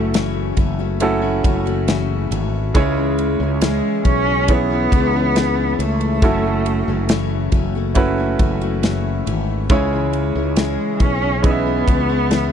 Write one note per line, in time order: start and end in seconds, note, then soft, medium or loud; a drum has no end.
0.00 0.53 F#1 loud
0.00 0.13 E3 soft
0.00 0.14 A3 soft
0.00 0.58 A3 medium
0.00 0.92 A3 medium
0.00 0.14 C#4 medium
0.00 0.92 C#4 medium
0.00 0.92 E4 medium
0.00 0.14 F#4 medium
0.00 0.92 F#4 medium
0.00 0.93 A4 medium
0.14 0.57 F#2 medium
0.14 0.57 C#3 medium
0.14 0.55 E3 loud
0.14 0.57 A3 medium
0.14 0.57 C#4 medium
0.14 0.58 F#4 loud
0.14 snare loud
0.14 ride medium
0.57 1.40 F#1 medium
0.57 0.79 E3 medium
0.57 0.79 A3 medium
0.57 0.78 C#4 medium
0.57 0.77 F#4 medium
0.57 kick medium
0.57 ride medium
0.79 1.23 E3 soft
0.79 1.23 A3 medium
0.79 1.22 C#4 medium
0.79 1.20 F#4 medium
1.00 2.66 A3 medium
1.00 2.66 C#4 medium
1.00 2.67 E4 medium
1.00 2.67 F#4 medium
1.00 2.67 A4 medium
1.00 ride medium
1.22 1.42 E3 soft
1.22 1.44 A3 medium
1.22 1.44 C#4 medium
1.22 1.44 F#4 medium
1.44 2.27 F#1 loud
1.44 1.66 E3 medium
1.44 1.66 A3 medium
1.44 1.66 C#4 medium
1.44 1.64 F#4 medium
1.44 kick medium
1.44 ride medium
1.66 1.88 E3 medium
1.66 1.88 A3 medium
1.66 1.88 C#4 medium
1.66 1.88 F#4 medium
1.66 ride soft
1.88 2.31 F#2 medium
1.88 2.32 C#3 medium
1.88 2.30 E3 loud
1.88 2.31 A3 medium
1.88 2.32 C#4 medium
1.88 2.32 F#4 medium
1.88 snare loud
1.88 ride medium
2.31 2.71 G#1 medium
2.31 2.74 E3 medium
2.31 2.75 A3 medium
2.31 2.74 C#4 medium
2.31 2.76 F#4 medium
2.31 ride medium
2.74 3.36 C#2 medium
2.74 2.96 C#3 medium
2.74 4.02 C#3 medium
2.74 2.97 E3 medium
2.74 4.40 G#3 medium
2.74 4.40 C#4 medium
2.74 2.97 C#4 loud
2.74 4.40 E4 medium
2.74 2.97 E4 medium
2.74 4.40 G#4 medium
2.74 2.96 G#4 medium
2.74 4.41 C#5 medium
2.74 kick loud
2.74 ride medium
2.97 3.41 C#4 soft
2.97 3.40 E4 soft
2.97 3.39 G#4 medium
3.18 ride medium
3.40 3.80 C#2 medium
3.40 3.61 C#4 soft
3.40 3.62 E4 soft
3.40 3.62 G#4 soft
3.61 4.05 C#3 medium
3.61 4.04 E3 medium
3.61 4.03 G#3 medium
3.61 4.05 C#4 medium
3.61 4.06 E4 medium
3.61 4.06 G#4 medium
3.61 snare loud
3.61 ride medium
4.05 4.88 B1 medium
4.05 4.27 E3 medium
4.05 4.27 C#4 medium
4.05 4.52 C#4 loud
4.05 4.27 E4 medium
4.05 4.25 G#4 medium
4.05 kick medium
4.05 ride medium
4.26 4.72 C#4 soft
4.26 4.71 E4 soft
4.26 4.69 G#4 medium
4.48 6.14 E3 medium
4.48 5.83 B3 loud
4.48 6.14 C#4 medium
4.48 6.14 E4 medium
4.48 6.14 G#4 medium
4.48 6.15 C#5 medium
4.48 kick medium
4.48 ride medium
4.70 4.91 C#4 soft
4.70 4.93 E4 soft
4.70 4.92 G#4 soft
4.92 5.75 C#2 medium
4.92 5.13 E3 medium
4.92 5.14 C#4 medium
4.92 5.14 E4 medium
4.92 5.12 G#4 medium
4.92 kick medium
4.92 ride medium
5.14 5.35 C#4 soft
5.14 5.36 E4 soft
5.14 5.35 G#4 medium
5.36 5.79 C#3 medium
5.36 5.78 E3 medium
5.36 5.79 C#4 medium
5.36 5.80 E4 medium
5.36 5.80 G#4 medium
5.36 snare medium
5.36 ride medium
5.79 6.19 C#2 medium
5.79 6.23 E3 medium
5.79 7.54 A3 medium
5.79 6.23 C#4 medium
5.79 6.24 E4 medium
5.79 6.24 G#4 medium
5.79 ride medium
6.01 ride soft
6.22 6.84 F#1 medium
6.22 6.44 F#2 medium
6.22 6.45 C#3 medium
6.22 6.45 E3 medium
6.22 7.88 A3 medium
6.22 6.45 A3 medium
6.22 7.88 C#4 medium
6.22 6.45 C#4 medium
6.22 7.88 E4 medium
6.22 7.88 F#4 medium
6.22 6.43 F#4 medium
6.22 7.88 A4 medium
6.22 kick loud
6.22 ride medium
6.45 6.89 E3 soft
6.45 6.88 A3 soft
6.45 6.88 C#4 soft
6.45 6.86 F#4 soft
6.66 ride medium
6.88 7.49 F#1 medium
6.88 7.09 E3 soft
6.88 7.10 A3 soft
6.88 7.10 C#4 medium
6.88 7.09 F#4 medium
7.09 7.53 F#2 medium
7.09 7.53 C#3 medium
7.09 7.51 E3 medium
7.09 7.53 A3 loud
7.09 7.54 C#4 medium
7.09 7.54 F#4 loud
7.09 snare loud
7.09 ride medium
7.52 8.35 F#1 medium
7.52 7.74 E3 medium
7.52 7.75 A3 medium
7.52 7.75 C#4 medium
7.52 7.74 F#4 medium
7.52 kick medium
7.52 ride medium
7.75 8.20 E3 soft
7.75 8.19 A3 medium
7.75 8.18 C#4 medium
7.75 8.17 F#4 medium
7.95 9.61 A3 medium
7.95 9.61 C#4 medium
7.95 9.61 E4 medium
7.95 9.61 F#4 medium
7.95 9.62 B4 medium
7.95 kick medium
7.95 ride medium
8.18 8.38 E3 soft
8.18 8.40 A3 medium
8.18 8.40 C#4 medium
8.18 8.40 F#4 medium
8.39 9.23 F#1 medium
8.39 8.61 E3 medium
8.39 8.62 A3 medium
8.39 8.61 C#4 medium
8.39 8.61 F#4 medium
8.39 kick medium
8.39 ride medium
8.61 8.83 E3 soft
8.61 8.83 A3 medium
8.61 8.84 C#4 medium
8.61 8.83 F#4 medium
8.61 ride soft
8.83 9.27 F#2 medium
8.83 9.27 C#3 medium
8.83 9.25 E3 medium
8.83 9.26 A3 medium
8.83 9.27 C#4 medium
8.83 9.28 F#4 medium
8.83 snare medium
8.83 ride medium
9.26 9.67 G#1 medium
9.26 9.69 E3 medium
9.26 9.71 A3 medium
9.26 9.70 C#4 medium
9.26 9.72 F#4 medium
9.26 ride medium
9.69 10.31 C#2 loud
9.69 9.92 C#3 medium
9.69 10.97 C#3 medium
9.69 9.92 E3 medium
9.69 11.35 G#3 medium
9.69 11.35 C#4 medium
9.69 9.93 C#4 medium
9.69 11.36 E4 medium
9.69 9.92 E4 medium
9.69 11.36 G#4 medium
9.69 9.91 G#4 medium
9.69 11.36 C#5 medium
9.69 kick loud
9.69 ride medium
9.92 10.37 C#4 soft
9.92 10.36 E4 medium
9.92 10.34 G#4 medium
10.13 ride medium
10.35 10.76 C#2 medium
10.35 10.57 C#4 soft
10.35 10.57 E4 soft
10.35 10.57 G#4 soft
10.56 11.00 C#3 medium
10.56 10.99 E3 medium
10.56 11.03 G#3 medium
10.56 11.00 C#4 medium
10.56 11.01 E4 medium
10.56 11.01 G#4 medium
10.56 snare loud
10.56 ride medium
11.00 11.83 B1 medium
11.00 11.22 E3 medium
11.00 11.23 C#4 medium
11.00 11.45 C#4 medium
11.00 11.22 E4 medium
11.00 11.21 G#4 medium
11.00 kick medium
11.00 ride medium
11.22 11.67 C#4 soft
11.22 11.66 E4 soft
11.22 11.64 G#4 medium
11.42 12.52 E3 medium
11.42 12.52 C#4 medium
11.42 12.52 E4 medium
11.42 12.52 G#4 medium
11.42 11.50 D#5 medium
11.42 kick loud
11.42 ride medium
11.47 12.52 B3 medium
11.47 12.52 E5 medium
11.66 11.87 C#4 soft
11.66 11.88 E4 soft
11.66 11.87 G#4 soft
11.87 12.52 C#2 medium
11.87 12.09 E3 medium
11.87 12.10 C#4 medium
11.87 12.09 E4 medium
11.87 12.08 G#4 medium
11.87 kick medium
11.87 ride medium
12.09 12.31 C#4 soft
12.09 12.31 E4 soft
12.09 12.31 G#4 medium
12.31 12.52 C#3 medium
12.31 12.52 E3 medium
12.31 12.52 C#4 medium
12.31 12.52 E4 medium
12.31 12.52 G#4 medium
12.31 snare medium
12.31 ride medium